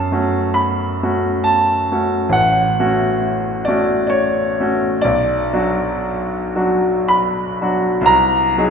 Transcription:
Already playing: F#2 A5
0.12 A3 C#4 F#4
0.54 B5
1.03 A3 C#4 F#4
1.44 A5
1.91 A3 C#4 F#4
2.29 A1 F#5
2.79 A3 C#4 F#4
3.65 A3 C#4 D5
3.69 F#4
4.07 C#5 D5
4.60 A3 C#4 F#4
5.01 B1 D5
5.53 F#3 D4 F#4
6.56 F#3 D4 F#4
7.08 B5
7.61 F#3 D4 F#4
8.01 C2
8.06 A#5
8.57 F#3 D#4 G#4

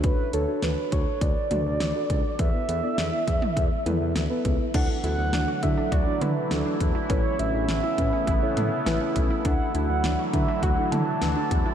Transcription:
Already playing: D2 D4 F#4 A4 C#5
0.04 B4, kick, closed hi-hat
0.33 D2 D4 F#4 A4 C#5, closed hi-hat
0.48 D4 F#4 A4 C#5
0.62 D2 B4, snare, closed hi-hat
0.92 D2 C#5, kick, closed hi-hat
1.21 D2 D5, kick, closed hi-hat
1.51 D2 D4 F#4 A4 D5, closed hi-hat, mid tom
1.66 D2
1.80 D2, snare, closed hi-hat
1.95 D4 F#4 A4 D5
2.10 C#2, kick, closed hi-hat
2.39 E2 B3 E4 A4 B4 E5, kick, closed hi-hat
2.68 E2 B3 E4 A4 B4, closed hi-hat
2.83 B3 E4 A4 D5
2.98 E2, snare, closed hi-hat
3.27 E2, kick, closed hi-hat
3.42 mid tom
3.57 E2, kick, closed hi-hat
3.86 E2 B3 E4 A4 B4, closed hi-hat, mid tom
4.01 E2
4.16 D2, snare, closed hi-hat
4.30 B3 E4 A4 B4
4.45 C#2, kick, closed hi-hat
4.74 D2 D3 E3 F#3 A3 D4 E4 F#4 A4 F#5, kick, closed hi-hat, crash
5.04 D2 D4 E4 F#4 A4 F#5, closed hi-hat
5.18 D2
5.33 D2 D4, snare, closed hi-hat
5.48 F#4
5.62 D3 D4 E4 F#4 A4 E5, kick, closed hi-hat
5.77 D4
5.92 D2 F#4 D5, kick, closed hi-hat
6.07 D4 E4 F#4 A4
6.21 D3 E4 B4, closed hi-hat, mid tom
6.51 D2 D4 E4 F#4 A4, snare, closed hi-hat
6.66 D4
6.80 E2, kick, closed hi-hat
6.95 E4
7.10 A1 C#3 B3 C#4 E4 A4 B4 C#5, kick, closed hi-hat
7.39 A1 C#4 E4 A4 B4 E5, closed hi-hat
7.54 A1
7.69 A1 C#4 E5, snare, closed hi-hat
7.83 E4
7.98 A2 C#4 E4 A4 B4, kick, closed hi-hat
8.13 C#4
8.27 A1 E4, kick, closed hi-hat
8.42 C#4 E4 A4 C#5
8.57 A2 D4, closed hi-hat, mid tom
8.86 A1 C#4 E4 A4 B4, snare, closed hi-hat
9.01 C#4
9.16 B1, kick, closed hi-hat
9.30 E4
9.45 D2 D3 E3 F#3 D4 E4 F#4 A4 F#5, kick, closed hi-hat
9.74 D2 D4 E4 F#4 A4 F#5, closed hi-hat
9.89 D2
10.04 D2 D4, snare, closed hi-hat
10.19 F#4
10.33 D3 D4 E4 F#4 B4 E5, kick, closed hi-hat
10.48 D4
10.62 D2 F#4 F#5, kick, closed hi-hat
10.78 D4 E4 F#4 A4
10.91 D3 E4 A5, closed hi-hat, mid tom
11.22 D2 D4 E4 F#4 B4, snare, closed hi-hat
11.36 D4
11.51 E2, kick, closed hi-hat
11.66 E4

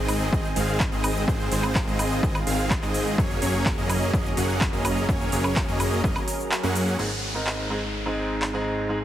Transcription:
Already playing: G#1 D#3 G#3 C4 D#4 G#4 D#5
0.09 open hi-hat, high woodblock, shaker
0.21 shaker
0.32 G#1 D#3 G#3 C4 G#4 D#5, kick, shaker
0.45 shaker
0.56 G#1 D#3 G#3 C4 G#4 F5, open hi-hat, shaker
0.69 shaker
0.80 kick, clap, shaker
0.92 G#1 D#3 G#3 C4 G#4 D#5, shaker
1.04 open hi-hat, high woodblock, shaker
1.17 shaker
1.27 G#1 D#3 G#3 C4 F4 G#4 C5, kick, shaker
1.40 shaker
1.52 G#1 D#3 G#3 C4 G#4 C5, open hi-hat, shaker
1.63 high woodblock, shaker
1.75 kick, clap, shaker
1.87 G#1 D#3 G#3 C4 G#4 D#5, shaker
1.99 open hi-hat, high woodblock, shaker
2.12 shaker
2.23 G#1 D#3 G#3 C4 G#4 D#5, kick, shaker
2.35 high woodblock, shaker
2.47 G#1 D#3 G#3 C4 G#4 F5, open hi-hat, shaker
2.59 shaker
2.70 kick, clap, shaker
2.82 G#2 D#3 G#3 C4 G#4 D#5, clap, shaker
2.94 open hi-hat, shaker
3.07 shaker
3.18 F#1 F#3 A#3 C#4 G#4 A#4 C#5, kick, shaker
3.31 shaker
3.42 F#1 F#3 A#3 C#4 G#4 C#5, open hi-hat, shaker
3.55 shaker
3.66 kick, clap, shaker
3.78 F#1 F#3 A#3 C#4 G#4 D#5, shaker
3.90 open hi-hat, high woodblock, shaker
4.02 shaker
4.13 F#1 F#3 A#3 C#4 G#4 D#5, kick, shaker
4.26 shaker
4.37 F#1 F#3 A#3 C#4 G#4 F#5, open hi-hat, shaker
4.50 shaker
4.61 kick, clap, shaker
4.73 F#1 F#3 A#3 C#4 G#4 D#5, shaker
4.85 open hi-hat, high woodblock, shaker
4.97 shaker
5.09 F#1 F#3 A#3 C#4 G#4 C#5, kick, shaker
5.21 shaker
5.32 F#1 F#3 A#3 C#4 G#4 C#5, open hi-hat, shaker
5.44 high woodblock, shaker
5.56 kick, clap, shaker
5.68 F#1 F#3 A#3 C#4 G#4 D#5, shaker
5.80 open hi-hat, high woodblock, shaker
5.93 shaker
6.04 F#1 F#3 A#3 C#4 G#4 D#5, kick, shaker
6.16 high woodblock, shaker
6.28 open hi-hat, shaker
6.40 shaker
6.51 clap, shaker
6.63 F#2 F#3 A#3 C#4 G#4 F#5, clap, shaker
6.75 open hi-hat, shaker
6.88 shaker
6.98 G#1 G#2 G#3 C4 D#4 G#4, crash, downlifter
7.34 G#2 G#3 C4 D#4 A#4
7.47 clap
7.70 G#2 G#3 C4 D#4 G#4
8.06 G#2 G#3 C4 D#4 G#4
8.42 clap
8.53 G#2 G#3 C4 D#4 G#4
8.89 G#2 G#3 C4 D#4 G#4

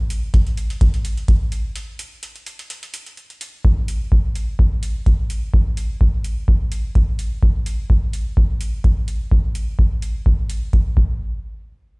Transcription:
0.10 open hi-hat
0.34 kick, closed hi-hat
0.47 closed hi-hat
0.57 open hi-hat
0.70 closed hi-hat
0.81 kick, closed hi-hat
0.94 closed hi-hat
1.05 open hi-hat
1.17 closed hi-hat
1.28 kick, closed hi-hat
1.52 open hi-hat
1.76 closed hi-hat
1.99 open hi-hat
2.23 closed hi-hat
2.36 closed hi-hat
2.46 open hi-hat
2.59 closed hi-hat
2.70 closed hi-hat
2.83 closed hi-hat
2.94 open hi-hat
3.06 closed hi-hat
3.17 open hi-hat
3.30 closed hi-hat
3.41 open hi-hat
3.65 kick
3.88 open hi-hat
4.12 kick
4.35 open hi-hat
4.59 kick
4.83 open hi-hat
5.06 kick, open hi-hat
5.30 open hi-hat
5.54 kick
5.77 open hi-hat
6.01 kick
6.24 open hi-hat
6.48 kick
6.72 open hi-hat
6.95 kick, open hi-hat
7.19 open hi-hat
7.43 kick
7.66 open hi-hat
7.90 kick
8.13 open hi-hat
8.37 kick
8.61 open hi-hat
8.84 kick, open hi-hat
9.08 open hi-hat
9.31 kick
9.55 open hi-hat
9.79 kick
10.02 open hi-hat
10.26 kick
10.50 open hi-hat
10.73 kick, open hi-hat
10.97 kick

